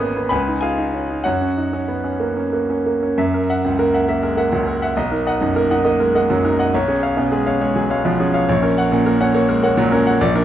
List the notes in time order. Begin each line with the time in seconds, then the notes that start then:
Already playing: G#1 B3 C#4 G#4 D#5 G#5 B5 D#6
0.00 A#3
0.17 B3
0.29 C#2 B4 G#5 B5
0.48 D#4
0.61 F4 G#4 F5 G#5
0.78 D#4
0.94 C#4
1.10 D#4
1.24 F#2 F#4 C#5 F#5
1.41 C#4
1.57 D#4
1.73 C#4
1.88 B3
2.04 C#4
2.20 A#3
2.37 C#4
2.53 A#3
2.70 C#4
2.86 A#3
3.03 C#4
3.18 F#2 E5
3.34 A#4
3.50 E5 F#5
3.65 C#2
3.79 A#3 A#4
3.94 E5 F#5
4.09 A#3 E5
4.23 G#3 A#4
4.37 A#3 E5 F#5
4.52 C#2 F#3
4.67 A#4
4.82 E5 F#5
4.97 B1 D#5
5.11 D#4 A#4
5.27 D#5 F#5
5.41 F#2 D#4
5.56 A#3 A#4
5.71 D#4 D#5 F#5
5.85 A#3 D#5
6.00 G#3 A#4
6.15 A#3 D#5 F#5
6.30 F#2 F#3
6.44 D#4 A#4
6.59 D#5 F#5
6.74 B1 C#5
6.88 C#4 G#4
7.02 C#5 F5
7.17 B2 C#4
7.32 G#3 G#4
7.46 C#4 C#5 F5
7.61 G#3 C#5
7.76 F#3 G#4
7.90 G#3 C#5 F5
8.05 B2 F3
8.20 C#4 G#4
8.34 C#5 F5
8.49 A#1 C#5
8.62 C#4 A#4
8.78 C#5 F#5
8.92 A#2 C#4
9.06 A#3 A#4
9.20 C#4 C#5 F#5
9.34 A#3 C#5
9.49 G#3 A#4
9.63 A#3 C#5 F#5
9.77 A#2 F#3
9.92 C#4 A#4
10.06 C#5 F#5
10.21 A#1 D5
10.35 D4 A#4